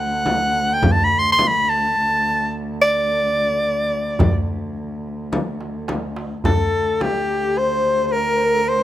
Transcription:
0.00 6.45 D2 medium
0.00 0.75 F#5 medium
0.26 darbuka tek medium
0.26 frame drum medium
0.74 0.86 G5 medium
0.83 0.93 G5 medium
0.83 frame drum medium
0.83 darbuka dum loud
0.92 1.06 A5 medium
1.04 1.20 B5 medium
1.19 1.31 C6 medium
1.32 1.49 C6 loud
1.39 darbuka tek medium
1.39 frame drum medium
1.48 1.71 B5 medium
1.69 2.54 A5 loud
1.95 darbuka ka soft
2.81 4.45 D5 loud
4.19 darbuka dum loud
4.19 frame drum medium
4.76 darbuka ka soft
5.32 darbuka tek medium
5.32 frame drum medium
5.61 darbuka ka medium
5.88 darbuka tek medium
5.88 frame drum medium
6.16 darbuka ka medium
6.44 8.83 D2 medium
6.44 7.03 A4 medium
6.44 7.05 A4 medium
6.44 darbuka dum medium
6.44 frame drum medium
7.01 7.59 G4 medium
7.01 7.60 G4 medium
7.01 darbuka tek medium
7.01 frame drum medium
7.58 8.06 C5 medium
7.58 8.17 C5 medium
8.06 8.14 C5 medium
8.12 8.70 A#4 medium
8.12 8.38 A#4 medium
8.37 8.47 C5 medium
8.45 8.55 A#4 medium
8.53 8.64 A4 medium
8.62 8.73 A#4 medium
8.69 8.83 C5 loud
8.69 8.83 C5 medium
8.69 darbuka ka soft

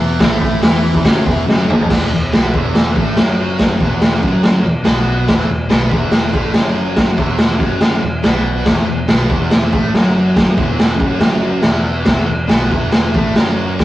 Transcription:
0.00 0.17 E1 loud
0.00 0.19 E2 medium
0.00 0.20 E3 loud
0.19 0.60 A1 loud
0.19 0.60 A2 medium
0.19 0.62 A3 loud
0.19 kick loud
0.19 snare loud
0.19 open hi-hat medium
0.42 kick medium
0.61 1.02 E2 loud
0.61 1.04 E3 medium
0.61 1.04 E4 loud
0.61 snare loud
0.61 open hi-hat medium
0.95 kick medium
1.03 1.25 F#1 loud
1.03 1.24 F#2 medium
1.03 1.25 F#3 loud
1.03 kick loud
1.03 snare loud
1.03 open hi-hat medium
1.25 1.46 E1 medium
1.25 1.45 E2 medium
1.25 1.46 E3 loud
1.25 kick medium
1.45 1.68 F#1 medium
1.45 1.67 F#2 medium
1.45 1.68 F#3 loud
1.45 snare medium
1.68 1.89 G#1 medium
1.68 1.89 G#2 medium
1.68 1.89 G#3 medium
1.68 mid tom medium
1.81 floor tom medium
1.89 2.10 E1 medium
1.89 2.10 E2 medium
1.89 2.11 E3 loud
1.89 kick loud
1.89 snare loud
1.89 crash loud
1.89 crash medium
2.12 2.31 E1 medium
2.12 2.28 E2 medium
2.33 2.52 B1 medium
2.33 2.53 B2 medium
2.33 2.53 B3 medium
2.33 snare loud
2.33 crash medium
2.53 2.93 E1 medium
2.53 2.95 E2 medium
2.53 2.96 E3 medium
2.53 kick loud
2.75 snare loud
2.75 crash medium
2.94 3.16 A1 medium
2.94 3.15 A2 medium
2.94 3.17 A3 loud
2.94 kick medium
3.16 3.77 F#1 medium
3.16 3.78 F#2 medium
3.16 3.79 F#3 medium
3.16 snare loud
3.16 crash medium
3.59 kick medium
3.59 snare loud
3.59 crash medium
3.78 4.20 E1 medium
3.78 4.21 E2 medium
3.78 4.21 E3 medium
3.78 kick loud
4.01 snare loud
4.01 crash medium
4.21 4.62 F#1 medium
4.21 4.63 F#2 medium
4.21 4.64 F#3 medium
4.21 kick medium
4.43 snare loud
4.43 crash soft
4.63 4.84 E1 medium
4.63 4.81 E2 medium
4.84 5.26 B1 loud
4.84 5.27 B2 medium
4.84 5.27 B3 medium
4.84 snare loud
4.84 crash medium
5.26 5.47 E2 medium
5.26 5.49 E3 loud
5.26 kick loud
5.26 snare loud
5.26 crash soft
5.48 5.69 E1 medium
5.48 5.66 E2 medium
5.69 5.90 B1 loud
5.69 5.90 B2 medium
5.69 5.91 B3 loud
5.69 snare loud
5.69 crash medium
5.90 6.31 E1 loud
5.90 6.32 E2 medium
5.90 6.33 E3 medium
5.90 kick loud
6.11 snare loud
6.11 crash medium
6.32 6.53 A1 medium
6.32 6.53 A2 medium
6.32 6.54 A3 loud
6.32 kick loud
6.53 7.15 F#1 medium
6.53 7.15 F#2 medium
6.53 7.16 F#3 medium
6.53 snare loud
6.53 crash medium
6.96 kick medium
6.96 snare loud
6.96 crash medium
7.16 7.57 E1 medium
7.16 7.57 E2 medium
7.16 7.59 E3 medium
7.16 kick loud
7.38 snare loud
7.38 crash medium
7.57 8.00 F#1 medium
7.57 8.01 F#2 medium
7.57 8.02 F#3 medium
7.57 kick loud
7.80 snare loud
7.80 crash medium
8.02 8.23 E1 medium
8.02 8.20 E2 medium
8.23 8.63 B1 medium
8.23 8.65 B2 medium
8.23 8.66 B3 medium
8.23 snare loud
8.23 crash medium
8.65 8.86 E1 medium
8.65 8.85 E2 medium
8.65 8.88 E3 loud
8.65 kick loud
8.65 snare loud
8.65 crash medium
8.86 9.07 E1 medium
8.86 9.04 E2 medium
9.08 9.28 B1 medium
9.08 9.29 B2 medium
9.08 9.30 B3 loud
9.08 snare loud
9.08 crash medium
9.28 9.70 E1 loud
9.28 9.71 E2 medium
9.28 9.72 E3 loud
9.28 kick loud
9.51 snare loud
9.51 crash medium
9.71 9.93 A1 medium
9.71 9.92 A2 medium
9.71 9.93 A3 loud
9.71 kick loud
9.92 10.54 F#1 loud
9.92 10.55 F#2 medium
9.92 10.57 F#3 medium
9.92 snare medium
9.92 crash medium
10.36 kick loud
10.36 snare loud
10.36 crash medium
10.55 10.97 E1 medium
10.55 10.96 E2 medium
10.55 10.98 E3 medium
10.55 kick loud
10.79 snare loud
10.79 crash medium
10.97 11.20 F#1 loud
10.97 11.18 F#2 medium
10.97 11.19 F#3 medium
10.97 kick loud
11.20 11.61 F#1 loud
11.20 11.62 F#2 medium
11.20 11.63 F#3 medium
11.20 snare loud
11.20 crash medium
11.62 12.04 E1 loud
11.62 12.05 E2 medium
11.62 12.06 E3 medium
11.62 snare loud
11.62 crash medium
12.05 12.26 E2 medium
12.05 12.28 E3 loud
12.05 kick loud
12.05 snare loud
12.05 crash medium
12.27 12.49 E1 medium
12.27 12.45 E2 medium
12.47 12.70 B1 loud
12.47 12.69 B2 medium
12.47 12.70 B3 loud
12.47 snare loud
12.47 crash medium
12.69 13.11 E1 medium
12.69 13.12 E2 medium
12.69 13.13 E3 medium
12.69 kick loud
12.92 snare loud
12.92 crash medium
13.13 13.34 A1 medium
13.13 13.34 A2 medium
13.13 13.35 A3 loud
13.13 kick loud
13.34 13.84 F#1 medium
13.34 13.84 F#2 medium
13.34 13.84 F#3 medium
13.34 snare loud
13.34 crash medium
13.79 kick loud
13.79 snare loud
13.79 crash medium

